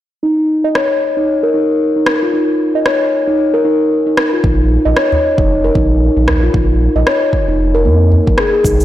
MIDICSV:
0, 0, Header, 1, 5, 480
1, 0, Start_track
1, 0, Tempo, 526316
1, 209, Time_signature, 4, 2, 24, 8
1, 8069, End_track
2, 0, Start_track
2, 0, Title_t, "Steel tongue drum"
2, 0, Program_c, 0, 114
2, 209, Note_on_c, 0, 63, 68
2, 343, Note_off_c, 0, 63, 0
2, 587, Note_on_c, 0, 75, 65
2, 682, Note_off_c, 0, 75, 0
2, 687, Note_on_c, 0, 73, 72
2, 768, Note_off_c, 0, 73, 0
2, 1065, Note_on_c, 0, 63, 63
2, 1162, Note_off_c, 0, 63, 0
2, 1305, Note_on_c, 0, 70, 87
2, 1402, Note_off_c, 0, 70, 0
2, 1404, Note_on_c, 0, 63, 77
2, 1773, Note_off_c, 0, 63, 0
2, 1791, Note_on_c, 0, 63, 62
2, 1847, Note_off_c, 0, 63, 0
2, 1887, Note_on_c, 0, 70, 61
2, 2022, Note_off_c, 0, 70, 0
2, 2030, Note_on_c, 0, 65, 66
2, 2124, Note_off_c, 0, 65, 0
2, 2130, Note_on_c, 0, 63, 66
2, 2263, Note_off_c, 0, 63, 0
2, 2510, Note_on_c, 0, 75, 66
2, 2604, Note_off_c, 0, 75, 0
2, 2607, Note_on_c, 0, 73, 75
2, 2688, Note_off_c, 0, 73, 0
2, 2986, Note_on_c, 0, 63, 65
2, 3082, Note_off_c, 0, 63, 0
2, 3226, Note_on_c, 0, 70, 89
2, 3322, Note_off_c, 0, 70, 0
2, 3327, Note_on_c, 0, 63, 85
2, 3695, Note_off_c, 0, 63, 0
2, 3708, Note_on_c, 0, 63, 65
2, 3766, Note_off_c, 0, 63, 0
2, 3811, Note_on_c, 0, 70, 63
2, 3943, Note_off_c, 0, 70, 0
2, 3950, Note_on_c, 0, 65, 69
2, 4044, Note_off_c, 0, 65, 0
2, 4050, Note_on_c, 0, 63, 73
2, 4183, Note_off_c, 0, 63, 0
2, 4426, Note_on_c, 0, 75, 72
2, 4522, Note_off_c, 0, 75, 0
2, 4529, Note_on_c, 0, 73, 70
2, 4609, Note_off_c, 0, 73, 0
2, 4906, Note_on_c, 0, 63, 67
2, 5002, Note_off_c, 0, 63, 0
2, 5147, Note_on_c, 0, 70, 88
2, 5243, Note_off_c, 0, 70, 0
2, 5246, Note_on_c, 0, 63, 90
2, 5614, Note_off_c, 0, 63, 0
2, 5626, Note_on_c, 0, 63, 67
2, 5684, Note_off_c, 0, 63, 0
2, 5724, Note_on_c, 0, 70, 67
2, 5860, Note_off_c, 0, 70, 0
2, 5866, Note_on_c, 0, 65, 70
2, 5962, Note_off_c, 0, 65, 0
2, 5963, Note_on_c, 0, 63, 79
2, 6100, Note_off_c, 0, 63, 0
2, 6345, Note_on_c, 0, 75, 68
2, 6442, Note_off_c, 0, 75, 0
2, 6443, Note_on_c, 0, 73, 71
2, 6526, Note_off_c, 0, 73, 0
2, 6824, Note_on_c, 0, 63, 67
2, 6921, Note_off_c, 0, 63, 0
2, 7063, Note_on_c, 0, 70, 95
2, 7159, Note_on_c, 0, 58, 66
2, 7161, Note_off_c, 0, 70, 0
2, 7298, Note_off_c, 0, 58, 0
2, 7540, Note_on_c, 0, 70, 67
2, 7634, Note_off_c, 0, 70, 0
2, 7641, Note_on_c, 0, 68, 71
2, 7725, Note_off_c, 0, 68, 0
2, 7781, Note_on_c, 0, 68, 71
2, 7880, Note_off_c, 0, 68, 0
2, 7882, Note_on_c, 0, 63, 73
2, 8019, Note_off_c, 0, 63, 0
2, 8069, End_track
3, 0, Start_track
3, 0, Title_t, "Sub bass"
3, 0, Program_c, 1, 38
3, 4047, Note_on_c, 1, 34, 105
3, 4361, Note_off_c, 1, 34, 0
3, 4430, Note_on_c, 1, 34, 80
3, 4499, Note_off_c, 1, 34, 0
3, 4908, Note_on_c, 1, 29, 94
3, 5200, Note_off_c, 1, 29, 0
3, 5246, Note_on_c, 1, 34, 91
3, 5560, Note_off_c, 1, 34, 0
3, 5624, Note_on_c, 1, 34, 80
3, 5918, Note_off_c, 1, 34, 0
3, 5965, Note_on_c, 1, 34, 104
3, 6280, Note_off_c, 1, 34, 0
3, 6343, Note_on_c, 1, 34, 88
3, 6416, Note_off_c, 1, 34, 0
3, 6823, Note_on_c, 1, 29, 101
3, 7163, Note_on_c, 1, 41, 83
3, 7176, Note_off_c, 1, 29, 0
3, 7479, Note_off_c, 1, 41, 0
3, 7545, Note_on_c, 1, 34, 80
3, 7617, Note_off_c, 1, 34, 0
3, 7884, Note_on_c, 1, 35, 99
3, 8069, Note_off_c, 1, 35, 0
3, 8069, End_track
4, 0, Start_track
4, 0, Title_t, "Udu"
4, 4673, Note_on_c, 9, 64, 82
4, 4764, Note_off_c, 9, 64, 0
4, 5729, Note_on_c, 9, 64, 86
4, 5821, Note_off_c, 9, 64, 0
4, 7404, Note_on_c, 9, 64, 79
4, 7495, Note_off_c, 9, 64, 0
4, 8069, End_track
5, 0, Start_track
5, 0, Title_t, "Drums"
5, 686, Note_on_c, 9, 37, 64
5, 777, Note_off_c, 9, 37, 0
5, 1883, Note_on_c, 9, 37, 74
5, 1974, Note_off_c, 9, 37, 0
5, 2605, Note_on_c, 9, 37, 69
5, 2696, Note_off_c, 9, 37, 0
5, 3807, Note_on_c, 9, 37, 75
5, 3898, Note_off_c, 9, 37, 0
5, 4048, Note_on_c, 9, 36, 114
5, 4139, Note_off_c, 9, 36, 0
5, 4528, Note_on_c, 9, 37, 73
5, 4620, Note_off_c, 9, 37, 0
5, 4907, Note_on_c, 9, 36, 99
5, 4999, Note_off_c, 9, 36, 0
5, 5246, Note_on_c, 9, 36, 96
5, 5338, Note_off_c, 9, 36, 0
5, 5725, Note_on_c, 9, 37, 71
5, 5817, Note_off_c, 9, 37, 0
5, 5966, Note_on_c, 9, 36, 113
5, 6057, Note_off_c, 9, 36, 0
5, 6445, Note_on_c, 9, 37, 72
5, 6536, Note_off_c, 9, 37, 0
5, 6685, Note_on_c, 9, 36, 55
5, 6776, Note_off_c, 9, 36, 0
5, 7545, Note_on_c, 9, 36, 106
5, 7636, Note_off_c, 9, 36, 0
5, 7640, Note_on_c, 9, 37, 74
5, 7731, Note_off_c, 9, 37, 0
5, 7884, Note_on_c, 9, 36, 106
5, 7890, Note_on_c, 9, 82, 41
5, 7975, Note_off_c, 9, 36, 0
5, 7982, Note_off_c, 9, 82, 0
5, 8029, Note_on_c, 9, 82, 20
5, 8069, Note_off_c, 9, 82, 0
5, 8069, End_track
0, 0, End_of_file